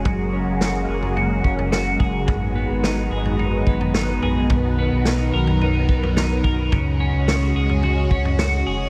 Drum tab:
SD |----o-------o---|----o-------o---|----o-------o---|----o-------o---|
FT |o------oo--o----|o------oo--o--o-|o------oo--o--o-|o------oo--o----|
BD |o---------o---o-|o---------o-----|o---------o---o-|o---------o-----|